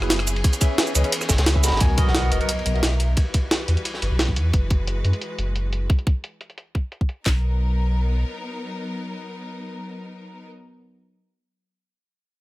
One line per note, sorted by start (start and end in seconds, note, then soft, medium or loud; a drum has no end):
0.00 0.43 F#1 medium
0.00 0.43 F#3 medium
0.00 0.16 F#3 medium
0.00 1.76 B3 medium
0.00 0.41 E4 medium
0.00 0.16 E4 medium
0.00 1.78 G#4 medium
0.00 0.16 G#4 medium
0.00 0.17 B4 medium
0.00 cross-stick soft
0.10 snare loud
0.10 closed hi-hat loud
0.10 ride medium
0.19 cross-stick soft
0.19 ride medium
0.27 closed hi-hat medium
0.27 cabasa medium
0.36 ride medium
0.44 1.79 E3 medium
0.44 1.79 C#4 medium
0.44 kick loud
0.44 closed hi-hat loud
0.44 ride medium
0.53 closed hi-hat soft
0.53 cabasa soft
0.61 0.93 C#4 medium
0.61 0.93 G#4 medium
0.61 0.94 B4 medium
0.61 0.94 E5 loud
0.61 kick loud
0.61 closed hi-hat medium
0.61 ride medium
0.61 cabasa medium
0.78 snare loud
0.78 closed hi-hat medium
0.78 ride medium
0.87 cabasa soft
0.95 1.03 C#2 loud
0.95 1.02 C#4 medium
0.95 1.02 G#4 medium
0.95 1.02 B4 medium
0.95 1.03 D#5 medium
0.95 closed hi-hat medium
0.95 ride medium
0.95 cabasa medium
1.04 1.12 C#4 medium
1.04 1.13 G#4 medium
1.04 1.13 B4 medium
1.04 1.13 E5 medium
1.04 closed hi-hat soft
1.12 closed hi-hat loud
1.12 ride loud
1.21 cross-stick medium
1.21 snare soft
1.21 cabasa soft
1.29 1.38 G#1 medium
1.29 kick medium
1.29 snare loud
1.29 closed hi-hat medium
1.29 ride medium
1.29 cabasa medium
1.38 1.71 C#2 loud
1.38 snare loud
1.38 closed hi-hat soft
1.38 ride medium
1.46 snare loud
1.46 closed hi-hat loud
1.46 ride medium
1.55 1.61 C#4 medium
1.55 1.62 G#4 medium
1.55 1.62 B4 medium
1.55 1.62 E5 loud
1.55 kick medium
1.63 1.95 B3 medium
1.63 1.96 F#4 medium
1.63 1.96 A#4 medium
1.63 1.96 D#5 loud
1.63 1.82 B5 loud
1.63 snare medium
1.63 closed hi-hat medium
1.63 ride medium
1.63 cabasa medium
1.68 snare medium
1.68 ride medium
1.72 1.80 G#1 medium
1.72 snare medium
1.72 ride medium
1.77 snare loud
1.77 ride medium
1.80 2.31 B1 medium
1.80 3.16 D#3 medium
1.80 3.16 F#3 medium
1.80 3.16 B3 medium
1.80 3.16 A#4 medium
1.80 2.06 G#5 loud
1.80 kick loud
1.80 closed hi-hat medium
1.80 ride medium
1.80 impact medium
1.97 2.29 B3 loud
1.97 2.30 F#4 medium
1.97 2.30 A#4 medium
1.97 2.30 D#5 loud
1.97 kick loud
1.97 closed hi-hat medium
1.97 ride medium
2.07 2.33 F#5 loud
2.07 snare soft
2.15 snare loud
2.15 closed hi-hat medium
2.15 ride loud
2.31 2.40 F#1 medium
2.31 2.38 B3 medium
2.31 2.38 F#4 medium
2.31 2.39 A#4 medium
2.31 2.77 D#5 medium
2.31 2.39 D#5 medium
2.31 closed hi-hat medium
2.31 ride medium
2.40 2.49 B3 medium
2.40 2.49 F#4 medium
2.40 2.49 A#4 medium
2.40 2.49 F#5 medium
2.40 closed hi-hat soft
2.49 closed hi-hat loud
2.49 ride medium
2.59 ride soft
2.66 3.16 B1 medium
2.66 closed hi-hat medium
2.66 ride medium
2.74 2.88 B3 medium
2.74 2.89 F#4 medium
2.74 2.89 A#4 medium
2.74 2.89 D#5 medium
2.74 3.17 E5 medium
2.74 ride soft
2.83 snare loud
2.83 closed hi-hat loud
2.83 ride medium
2.92 ride soft
3.00 closed hi-hat medium
3.00 ride medium
3.17 5.87 E3 medium
3.17 4.52 G3 medium
3.17 5.87 F#4 medium
3.17 5.87 B4 medium
3.17 kick loud
3.17 closed hi-hat medium
3.17 ride medium
3.34 kick loud
3.34 closed hi-hat medium
3.34 ride medium
3.51 snare loud
3.51 closed hi-hat medium
3.51 ride loud
3.68 3.76 E2 loud
3.68 closed hi-hat medium
3.68 ride medium
3.77 closed hi-hat soft
3.85 closed hi-hat loud
3.85 ride medium
3.94 snare soft
4.02 4.10 G1 loud
4.02 closed hi-hat medium
4.02 ride medium
4.11 4.38 B1 loud
4.19 snare loud
4.19 closed hi-hat medium
4.19 ride medium
4.29 kick medium
4.36 4.52 E2 medium
4.36 closed hi-hat medium
4.36 ride medium
4.53 5.03 F#1 loud
4.53 5.88 G#3 medium
4.53 kick loud
4.53 closed hi-hat medium
4.70 kick loud
4.70 closed hi-hat medium
4.87 closed hi-hat medium
5.05 5.13 F#2 medium
5.05 closed hi-hat medium
5.13 closed hi-hat soft
5.22 closed hi-hat medium
5.39 5.88 F#1 medium
5.39 closed hi-hat medium
5.56 closed hi-hat medium
5.73 closed hi-hat medium
5.90 kick loud
5.90 closed hi-hat medium
5.99 closed hi-hat soft
6.07 kick loud
6.07 closed hi-hat medium
6.24 closed hi-hat medium
6.41 closed hi-hat medium
6.50 closed hi-hat soft
6.58 closed hi-hat medium
6.75 kick medium
6.75 closed hi-hat medium
6.92 closed hi-hat medium
7.01 kick medium
7.09 closed hi-hat medium
7.26 8.24 B1 medium
7.26 10.47 F#3 medium
7.26 10.47 B3 medium
7.26 10.47 D#4 medium
7.26 10.47 A#4 medium
7.26 kick loud
7.26 snare loud
7.26 clap medium